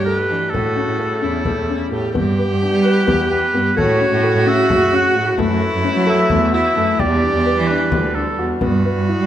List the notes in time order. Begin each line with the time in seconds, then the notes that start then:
Already playing: G2 B2 A3 G4 F#5
0.05 A4 B4
0.29 E3 D4
0.49 A2 C#3 G3 A4
0.54 F#4 A4, frame drum
0.76 C#4
0.87 A2
0.99 A4, frame drum
1.21 E2 C#4 E4, frame drum
1.45 A4, frame drum
1.57 E2
1.69 C#4
1.91 A2 G4 A4, frame drum
2.14 G2 E3 B3 G4, frame drum
2.38 B4
2.50 G2
2.62 D4
2.72 G3
2.83 B4
3.07 E2 B3, frame drum
3.30 G4 B4, frame drum
3.53 G2 B3
3.77 A2 C#3 A3 F#4 A4 C#5, frame drum
4.00 C#4
4.11 A2
4.24 A4
4.34 A2
4.46 C#4 E5
4.68 F#2 F#4, frame drum
4.92 C#4 F#5, frame drum
5.15 A2 F#4
5.37 F#2 E3 A3 E4, frame drum
5.60 A4
5.73 F#2
5.84 C#4
5.95 F#3
6.07 A4 E5
6.29 E2 A3, frame drum
6.52 E4 F#4 E5, frame drum
6.75 F#2 A3
6.98 E2 G3 D4 G4 D5, frame drum
7.23 D4
7.34 E2
7.45 B4
7.57 E3
7.67 D4 B4
7.92 D2 G4, frame drum
8.14 D4 A4
8.38 E2 F#4
8.61 G2 E3 B3 F#4, frame drum
8.85 B4
8.96 G2
9.09 E4
9.19 G3